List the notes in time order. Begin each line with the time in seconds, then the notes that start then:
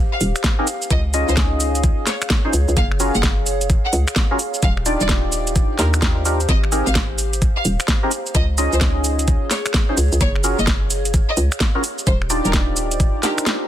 Already playing: G4 C5 F5
0.13 F5
0.21 D#1, open hi-hat, shaker
0.36 finger snap, closed hi-hat, shaker
0.44 kick, snare, closed hi-hat, shaker
0.59 C4 D#4 G4 G#4 A#4
0.67 open hi-hat, shaker
0.82 shaker
0.90 C#2 G#4 D#5, kick, closed hi-hat, shaker
1.14 C#4 D#4 F4 G#4 D#5, open hi-hat, shaker
1.23 C#5
1.29 C#2 C5, shaker
1.37 kick, snare, closed hi-hat, shaker
1.60 open hi-hat, shaker
1.75 closed hi-hat, shaker
1.83 kick, closed hi-hat, shaker
2.07 C#5, snare, open hi-hat, shaker
2.22 finger snap, closed hi-hat, shaker
2.30 kick, snare, closed hi-hat, shaker
2.45 C#4 D#4 F4 G#4 C5
2.53 C#2, open hi-hat, shaker
2.68 C#2, shaker
2.77 F#1 F5, kick, closed hi-hat, shaker
2.91 finger snap
3.00 C#4 F4 F#4 G#4 A#4, open hi-hat, shaker
3.15 F#1 F#5, shaker
3.23 kick, snare, closed hi-hat, shaker
3.46 open hi-hat, shaker
3.61 closed hi-hat, shaker
3.70 kick, closed hi-hat, shaker
3.85 F#5
3.93 C#2, open hi-hat, shaker
4.08 finger snap, closed hi-hat, shaker
4.16 kick, snare, closed hi-hat, shaker
4.31 C#4 F4 F#4 G#4 A#4
4.39 G4, open hi-hat, shaker
4.54 shaker
4.62 D#1 F5, kick, closed hi-hat, shaker
4.77 finger snap
4.82 D4 D#4 F4 G4 C5 D5, open hi-hat, shaker
5.01 D#1 D5, shaker
5.09 kick, snare, closed hi-hat, shaker
5.32 open hi-hat, shaker
5.47 closed hi-hat, shaker
5.56 kick, closed hi-hat, shaker
5.79 D#2 D4 D#4 F4 G4 A#4, snare, open hi-hat, shaker
5.94 finger snap, closed hi-hat, shaker
6.02 kick, snare, closed hi-hat, shaker
6.25 D4 D#4 F4 G4 A#4, open hi-hat, shaker
6.40 closed hi-hat, shaker
6.49 G#1 D#5, kick, closed hi-hat, shaker
6.64 finger snap
6.72 C4 D#4 G4 G#4 A#4, open hi-hat, shaker
6.87 G#1 F5, shaker
6.95 kick, snare, closed hi-hat, shaker
7.18 open hi-hat, shaker
7.33 closed hi-hat, shaker
7.42 kick, closed hi-hat, shaker
7.57 F5
7.65 D#1, open hi-hat, shaker
7.80 finger snap, closed hi-hat, shaker
7.88 kick, snare, closed hi-hat, shaker
8.03 C4 D#4 G4 G#4 A#4
8.11 open hi-hat, shaker
8.26 shaker
8.35 C#2 G#4 D#5, kick, closed hi-hat, shaker
8.58 C#4 D#4 F4 G#4 D#5, open hi-hat, shaker
8.73 C#2 C5, shaker
8.77 C#5, kick, snare, closed hi-hat, shaker
9.04 open hi-hat, shaker
9.19 closed hi-hat, shaker
9.28 kick, closed hi-hat, shaker
9.51 C#5, snare, open hi-hat, shaker
9.66 finger snap, closed hi-hat, shaker
9.74 kick, snare, closed hi-hat, shaker
9.89 C#4 D#4 F4 G#4 C5
9.97 C#2, open hi-hat, shaker
10.12 C#2, shaker
10.21 F#1 C#5, kick, closed hi-hat, shaker
10.36 finger snap
10.44 C#4 F4 F#4 G#4 A#4, open hi-hat, shaker
10.59 F#1 D#5, shaker
10.67 kick, snare, closed hi-hat, shaker
10.90 open hi-hat, shaker
11.05 closed hi-hat, shaker
11.14 kick, closed hi-hat, shaker
11.29 D#5
11.37 C#2, open hi-hat, shaker
11.52 finger snap, closed hi-hat, shaker
11.60 kick, snare, closed hi-hat, shaker
11.75 C#4 F4 F#4 G#4 A#4
11.84 G4, open hi-hat, shaker
11.98 C5, shaker
12.07 D#1 C5, kick, closed hi-hat, shaker
12.22 finger snap
12.30 D4 D#4 F4 G4 D5, open hi-hat, shaker
12.45 D#1 A#4, closed hi-hat, shaker
12.53 F5, kick, snare, closed hi-hat, shaker
12.77 open hi-hat, shaker
12.91 closed hi-hat, shaker
13.00 kick, closed hi-hat, shaker
13.23 D4 D#4 F4 G4 A#4, snare, open hi-hat, shaker
13.38 finger snap, closed hi-hat, shaker
13.46 snare, closed hi-hat, shaker